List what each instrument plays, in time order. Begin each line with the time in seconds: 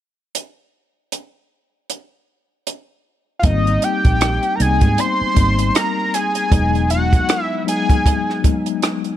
0.35 closed hi-hat
1.12 closed hi-hat
1.90 closed hi-hat
2.67 closed hi-hat
3.39 tine electric piano G3 A#3, analog synth lead F5
3.43 fingered electric bass G#1, tine electric piano C4 D#4, analog synth lead D#5, kick, closed hi-hat
3.67 closed hi-hat
3.82 analog synth lead G5, closed hi-hat
4.05 fingered electric bass A#1, kick, closed hi-hat
4.21 cross-stick, closed hi-hat
4.43 closed hi-hat
4.55 tine electric piano G3 A#3 B3, analog synth lead A#5
4.60 fingered electric bass C2, tine electric piano D#4, analog synth lead G#5, closed hi-hat
4.66 tine electric piano C4
4.81 fingered electric bass G#2, kick, closed hi-hat
4.98 analog synth lead C6, closed hi-hat
5.21 muted fingered electric bass stroke
5.34 fingered electric bass G#1, tine electric piano G3 A#3 C4 D#4, kick, closed hi-hat
5.59 closed hi-hat
5.75 analog synth lead A#5, cross-stick, closed hi-hat
6.14 analog synth lead G#5, cross-stick, closed hi-hat
6.35 closed hi-hat
6.50 fingered electric bass E1, tine electric piano F#3 G#3 B3 D#4, kick, closed hi-hat
6.75 closed hi-hat
6.90 analog synth lead F#5, closed hi-hat
7.13 kick, closed hi-hat
7.29 cross-stick, closed hi-hat
7.44 analog synth lead E5
7.65 tine electric piano F#3 G#3 B3 D#4, closed hi-hat
7.69 analog synth lead G#5
7.90 kick, closed hi-hat
8.06 kick, closed hi-hat
8.30 cross-stick
8.42 tine electric piano F#3 G#3 B3 D#4, kick, closed hi-hat
8.66 closed hi-hat
8.82 cross-stick, closed hi-hat
9.04 closed hi-hat